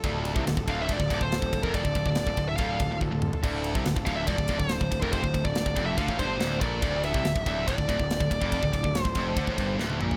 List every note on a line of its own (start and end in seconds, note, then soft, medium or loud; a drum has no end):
0.00 10.17 D3 medium
0.00 10.17 A3 medium
0.00 10.17 F4 medium
0.00 10.17 A4 medium
0.00 kick loud
0.00 ride loud
0.04 0.33 D1 medium
0.04 0.35 D2 loud
0.25 ride medium
0.36 0.45 C2 medium
0.36 0.46 C3 loud
0.36 kick loud
0.46 0.56 D1 medium
0.46 0.56 D2 medium
0.46 snare loud
0.46 ride loud
0.57 0.67 D1 medium
0.57 0.67 D2 medium
0.57 kick loud
0.68 0.87 D1 loud
0.68 0.88 D2 medium
0.68 0.80 F5 loud
0.68 kick medium
0.68 ride medium
0.82 0.93 E5 loud
0.89 0.99 E1 loud
0.89 0.99 E2 loud
0.89 kick loud
0.89 ride loud
0.93 1.23 D5 loud
1.00 1.09 D1 medium
1.00 1.09 D2 medium
1.00 kick medium
1.10 1.20 D1 medium
1.10 1.20 D2 loud
1.10 kick medium
1.10 ride medium
1.21 1.40 D1 medium
1.21 1.37 D2 medium
1.21 1.63 C5 medium
1.21 kick medium
1.32 snare loud
1.32 ride loud
1.42 1.52 D1 medium
1.42 1.51 D2 medium
1.42 kick medium
1.52 1.63 D1 medium
1.52 1.63 D2 medium
1.52 kick medium
1.52 ride medium
1.63 1.83 F1 loud
1.63 1.84 F2 loud
1.63 1.74 A#4 medium
1.63 kick medium
1.74 2.06 D5 loud
1.74 kick loud
1.74 ride loud
1.84 1.94 D1 medium
1.84 1.95 D2 medium
1.84 kick medium
1.95 2.05 D1 medium
1.95 2.05 D2 medium
1.95 kick medium
1.95 ride medium
2.06 2.25 D1 medium
2.06 2.23 D2 medium
2.06 2.48 D5 medium
2.06 kick medium
2.15 snare loud
2.15 ride loud
2.26 2.36 D1 medium
2.26 2.36 D2 medium
2.26 kick medium
2.37 2.57 D1 medium
2.37 2.54 D2 medium
2.37 kick medium
2.37 ride medium
2.49 2.56 E5 medium
2.56 2.78 D1 medium
2.56 2.79 D2 loud
2.56 2.97 F5 medium
2.56 kick loud
2.56 ride loud
2.80 2.89 D1 medium
2.80 2.89 D2 medium
2.80 kick medium
2.80 ride medium
2.90 3.00 D1 medium
2.90 2.99 D2 medium
3.01 3.11 D1 medium
3.01 3.10 D2 medium
3.01 kick medium
3.11 3.32 D1 medium
3.11 3.28 D2 medium
3.22 mid tom loud
3.33 floor tom loud
3.43 3.73 D1 medium
3.43 3.74 D2 loud
3.43 kick loud
3.43 crash loud
3.64 ride medium
3.75 3.85 C2 medium
3.75 3.85 C3 loud
3.75 kick loud
3.85 3.95 D1 medium
3.85 3.95 D2 medium
3.85 snare loud
3.85 ride loud
3.96 4.06 D1 medium
3.96 4.05 D2 medium
3.96 kick loud
4.06 4.26 D1 loud
4.06 4.27 D2 medium
4.06 4.16 F5 loud
4.06 kick medium
4.06 ride medium
4.16 4.26 E5 loud
4.27 4.37 E1 medium
4.27 4.38 E2 loud
4.27 4.60 D5 loud
4.27 kick loud
4.27 ride loud
4.38 4.48 D1 medium
4.38 4.48 D2 medium
4.38 kick medium
4.48 4.59 D1 loud
4.48 4.58 D2 loud
4.48 kick medium
4.48 ride medium
4.59 4.79 D1 medium
4.59 4.77 D2 medium
4.59 4.99 C5 medium
4.59 kick medium
4.69 snare loud
4.69 ride loud
4.80 4.91 D1 medium
4.80 4.90 D2 medium
4.80 kick medium
4.91 5.02 D1 medium
4.91 5.02 D2 medium
4.91 kick medium
4.91 ride medium
5.02 5.22 F1 medium
5.02 5.23 F2 loud
5.02 5.12 A#4 medium
5.02 kick medium
5.13 5.45 C5 loud
5.13 kick loud
5.13 ride loud
5.24 5.33 D1 medium
5.24 5.33 D2 medium
5.24 kick medium
5.34 5.44 D1 medium
5.34 5.43 D2 medium
5.34 kick medium
5.34 ride medium
5.44 5.64 D1 medium
5.44 5.61 D2 medium
5.44 5.84 D5 loud
5.44 kick medium
5.55 snare loud
5.55 ride loud
5.66 5.76 D1 medium
5.66 5.76 D2 medium
5.66 kick medium
5.76 5.96 F1 loud
5.76 5.97 F2 loud
5.76 kick medium
5.76 ride medium
5.86 5.97 E5 medium
5.98 6.08 D2 medium
5.98 6.08 D3 loud
5.98 6.17 F5 loud
5.98 kick loud
5.98 ride loud
6.08 6.18 A1 medium
6.08 6.18 A2 loud
6.08 kick medium
6.19 6.39 G1 loud
6.19 6.39 G2 loud
6.19 6.58 C5 medium
6.19 kick medium
6.19 ride medium
6.40 6.60 D1 loud
6.40 6.61 D2 loud
6.40 snare loud
6.40 ride medium
6.61 6.81 A#1 loud
6.61 6.82 A#2 loud
6.61 7.04 D5 loud
6.61 kick loud
6.61 ride medium
6.82 7.12 D1 loud
6.82 7.14 D2 loud
6.82 kick loud
6.82 ride loud
7.04 7.46 E5 loud
7.04 ride medium
7.14 7.24 C2 loud
7.14 7.24 C3 loud
7.14 kick loud
7.24 7.34 D1 medium
7.24 7.34 D2 medium
7.24 snare loud
7.24 ride loud
7.35 7.45 D1 medium
7.35 7.45 D2 medium
7.35 kick medium
7.46 7.66 D1 loud
7.46 7.67 D2 medium
7.46 7.68 E5 loud
7.46 kick medium
7.46 ride medium
7.67 7.78 E1 medium
7.67 7.77 E2 loud
7.67 9.03 D5 medium
7.67 kick loud
7.67 ride loud
7.78 7.88 D1 medium
7.78 7.87 D2 medium
7.78 kick medium
7.88 7.98 D1 loud
7.88 7.97 D2 loud
7.88 kick medium
7.88 ride medium
7.99 8.19 D1 medium
7.99 8.16 D2 medium
7.99 kick loud
8.10 snare loud
8.10 ride loud
8.20 8.30 D1 medium
8.20 8.29 D2 medium
8.20 kick loud
8.31 8.41 D1 medium
8.31 8.40 D2 medium
8.31 kick medium
8.31 ride medium
8.41 8.61 F1 medium
8.41 8.61 F2 loud
8.41 kick medium
8.52 kick loud
8.52 ride loud
8.62 8.72 D1 medium
8.62 8.71 D2 medium
8.62 kick medium
8.72 8.83 D1 medium
8.72 8.82 D2 medium
8.72 kick medium
8.72 ride medium
8.83 9.04 D1 medium
8.83 9.00 D2 medium
8.83 kick medium
8.95 snare loud
8.95 ride loud
9.03 9.15 D1 medium
9.03 9.15 D2 medium
9.03 9.75 C5 medium
9.03 kick medium
9.15 9.35 F1 loud
9.15 9.36 F2 loud
9.15 kick medium
9.15 ride medium
9.37 9.46 D2 loud
9.37 9.47 D3 loud
9.37 kick loud
9.37 ride loud
9.47 9.57 A1 medium
9.47 9.57 A2 loud
9.47 kick medium
9.57 9.78 G1 loud
9.57 9.78 G2 loud
9.57 kick medium
9.57 ride medium
9.79 9.99 D1 medium
9.79 10.00 D2 loud
9.79 snare medium
9.90 high tom medium
10.00 10.17 A#1 medium
10.00 10.17 A#2 loud
10.00 mid tom medium
10.11 floor tom medium